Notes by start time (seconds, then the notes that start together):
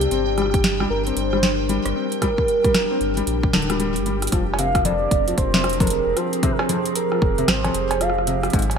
Already playing: C3 G3 D4 G4 D5 G5
0.01 closed hi-hat
0.11 G1 C4, closed hi-hat
0.33 G4
0.38 G3, cross-stick, closed hi-hat
0.42 cross-stick
0.46 cross-stick
0.50 cross-stick
0.54 kick, cross-stick, closed hi-hat
0.57 cross-stick
0.59 cross-stick
0.61 cross-stick, snare, closed hi-hat
0.80 G3, cross-stick
0.90 G1 A#4
0.98 A#4
1.07 C4, closed hi-hat
1.16 G1 C5, closed hi-hat
1.33 G3, cross-stick
1.43 snare, closed hi-hat
1.69 G3, closed hi-hat
1.85 G1, cross-stick, closed hi-hat
1.96 C4
2.12 closed hi-hat
2.22 G3 A#4, kick, cross-stick, closed hi-hat
2.38 kick
2.48 closed hi-hat
2.64 G3, kick, closed hi-hat
2.74 cross-stick, snare, closed hi-hat
2.91 C4
3.01 G1, closed hi-hat
3.17 G3, closed hi-hat
3.27 A#1, closed hi-hat
3.43 kick
3.53 D1 D3, snare, closed hi-hat
3.62 closed hi-hat
3.70 G3, cross-stick, closed hi-hat
3.80 G3, closed hi-hat
3.96 G1, closed hi-hat
4.06 G3, closed hi-hat
4.22 cross-stick, closed hi-hat
4.27 closed hi-hat
4.32 F1 F3, kick, cross-stick, closed hi-hat
4.54 C4, cowbell
4.59 C3 F5, closed hi-hat
4.75 kick, cross-stick, closed hi-hat
4.85 F2 D5, closed hi-hat
4.94 G#4
5.11 F1, kick, closed hi-hat
5.28 F3, closed hi-hat
5.38 F1 C5, kick, closed hi-hat
5.54 C3, snare, closed hi-hat
5.64 cross-stick, closed hi-hat
5.69 closed hi-hat
5.73 closed hi-hat
5.80 F2 A#4, kick, closed hi-hat
5.87 closed hi-hat
5.90 closed hi-hat
6.06 F1
6.17 F3 C5, cross-stick, closed hi-hat
6.33 closed hi-hat
6.43 C3 C5, kick, closed hi-hat
6.52 A#4
6.59 C5, cross-stick, cowbell
6.69 F2, closed hi-hat
6.86 closed hi-hat
6.95 A#4, closed hi-hat
7.12 F3, cross-stick
7.22 F1, kick
7.38 C3, closed hi-hat
7.48 G#1 C5, cross-stick, snare, closed hi-hat
7.64 F2, closed hi-hat, cowbell
7.74 F1, closed hi-hat
7.91 closed hi-hat, cowbell
8.01 F3 F5, cross-stick, closed hi-hat
8.10 cross-stick
8.18 cross-stick
8.27 C3, closed hi-hat
8.43 cross-stick, closed hi-hat
8.50 G#1 G#2 G#3, kick, closed hi-hat
8.53 closed hi-hat
8.59 closed hi-hat
8.62 closed hi-hat
8.70 closed hi-hat, cowbell